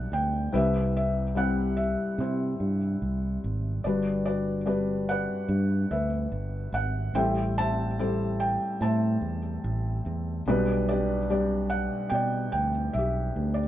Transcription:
Already playing: B1 B2 G3 D4 G4 B4 D5 E5 F#5
0.12 D2 G5
0.53 C2 C3 G3 C4 E4 G4 B4 E5
0.97 E5
1.35 G3 C4 E4 G4 F#5
1.77 E5
2.18 C3 E4 G4 C5
2.60 G2
3.02 C2
3.44 G#1
3.84 G1 G2 G3 D4 F#4 B4 D5
4.26 F#4 B4 D5
4.66 G3 D4 F#4 B4
5.09 B4 D5 F#5
5.49 G2
5.91 D2 B4 E5
6.32 G1
6.72 G#1 F#5
7.14 A1 A2 G3 E4 A4 C5 E5 G5
7.58 C5 E5 A5
7.99 G3 E4 A4 C5
8.40 G5
8.81 A2 C5 E5 A5
9.21 E2
9.64 A1
10.06 E2
10.47 B1 B2 G3 D4 F#4 B4
10.89 D4 G4 D5
11.30 G3 D4 G4 D5
11.70 F#5
12.10 B2 G5
12.14 D5
12.52 D2 G5
12.93 B1 E5
12.99 G4
13.36 D2
13.54 D5

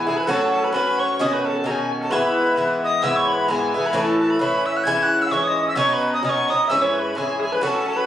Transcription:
0.07 E3 B3 E4 G#4 G#5
0.17 B4 B5
0.26 A2 F#3 C#4 F#4 A4 B4 B5
0.30 A4 A5
0.52 A4 A5
0.63 B4 B5
0.72 A2 F#3 C#4 F#4 B4 B5
0.98 C#5 C#6
1.19 B2 D#3 C#4 F#4 D#5 D#6
1.32 B4 B5
1.44 A4 A5
1.50 A4
1.54 A4
1.64 B2 D#3 C#4 F#4 G#4 A#5
1.71 G#5
2.01 A4 A5
2.10 G#2 E3 B3 E4 B4 C#6
2.15 B5
2.56 G#2 E3 B3 E4
2.83 D#5 D#6
3.02 G#2 E3 B3 E4 E5 E6
3.16 C#5 C#6
3.29 C#5 B5
3.33 B4
3.48 G#2 E3 B3 E4 G#4 G#5 A#5
3.74 E3 B3 E4 G#4 G#5
3.86 B4 B5
3.93 A2 E3 C#4 E4 A4 B5
4.00 A5
4.19 B4 A5
4.25 A4
4.30 B5
4.39 A2 E3 C#4 E4 B4 B5
4.65 E5 E6
4.77 F#5 F#6
4.84 G#2 E3 C#4 E4 G#5 G#6
4.99 G#5 G#6
5.03 F#5 F#6
5.22 E5 E6
5.30 G#2 E3 C#4 E4 C#5 C#6
5.43 D#6
5.48 D#5
5.68 E5 E6
5.75 B2 F#3 C#4 D#4 C#5 C#6
5.89 C#5 C#6
5.93 B4 B5
6.14 D#5 D#6
6.23 B2 F#3 C#4 D#4 C#5 D#6
6.30 C#6
6.48 F#3 C#4 D#4 D#5 D#6
6.68 G#2 E3 C#4 E4 E5 E6
6.82 C#5 C#6
6.93 B4 C#6
6.98 B4 B5
7.15 G#2 E3 C#4 E4 G#4 G#5
7.40 G#4 G#5
7.52 B4 B5
7.61 A2 F#3 C#4 F#4 A4 B5
7.67 A5
7.86 A4 A5
7.96 B4 B5

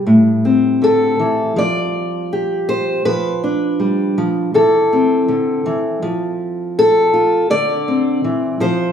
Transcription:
Already playing: G3
0.06 A2
0.45 C4
0.82 D3 A4
1.19 E3
1.56 F3 D5
2.33 G4
2.69 C5
3.05 F3 B4
3.44 D4
3.79 G3
4.18 F3
4.54 E3 A4
4.93 C4
5.28 D3
5.66 E3
6.02 F3
6.79 A4
7.14 F4
7.50 D3 D5
7.88 C4
8.24 E3
8.60 F3 C5

